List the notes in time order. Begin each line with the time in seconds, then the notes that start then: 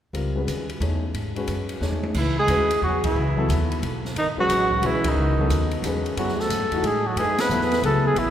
0.13 C#2 G3 C4 F4 A#4, ride
0.35 G#3 C#4 F#4 B4
0.47 D#2, hi-hat pedal, ride
0.70 ride
0.80 E2 A3 D#4 G#4 C#5, ride
1.14 G#2, ride
1.35 G#3 C#4 F#4 B4, ride
1.48 F#2, hi-hat pedal, ride
1.69 ride
1.81 E2 A3 D#4 G#4 C#5, snare
1.92 high tom
2.03 high tom
2.14 C#2 E4, kick, crash
2.19 E3
2.39 G#3 G#4
2.47 D#2 G#3 C#4 F#4 B4, hi-hat pedal, ride
2.71 ride
2.82 E2 F#3 F#4
3.04 E3 E4, kick, ride
3.15 C#2
3.36 F#3 B3 E4 A4, kick
3.49 D#2, hi-hat pedal, ride
3.72 ride
3.82 B1, ride
4.05 snare
4.15 G#1 D#3 D#4, ride
4.36 F#3 G#3 C#4 F#4 B4, muted upright bass stroke
4.49 A1, hi-hat pedal, ride
4.71 kick
4.82 B1 G#3 C#4 F#4 B4, ride
4.86 E3 E4
5.04 D#3 D#4, kick, ride
5.16 C#2
5.38 F#3 B3 D#4 A4, kick
5.49 D#2, hi-hat pedal, ride
5.71 ride
5.82 E2 G#3 C#4 F#4, hi-hat pedal, ride
5.87 B4
6.06 ride
6.17 F#2 F#3 B3 E4 F#4 G#4, ride
6.28 snare
6.39 A3 A4, snare
6.49 G#2, hi-hat pedal, ride
6.60 F#2
6.71 E2 E3 A3 D#4 F#4, ride
6.83 A2 G#3 G#4, ride
7.07 F#3 F#4
7.16 F#2 G#3 A3 D#4 G#4 B4, ride
7.38 B3 B4, snare, ride
7.49 E2 F#3 B3 E4 A4, hi-hat pedal
7.61 snare
7.72 snare, ride
7.82 C#2 F#3 A3 B3 E4 G#4 A4, ride
8.07 G#3 G#4
8.15 A1 E3 E4, ride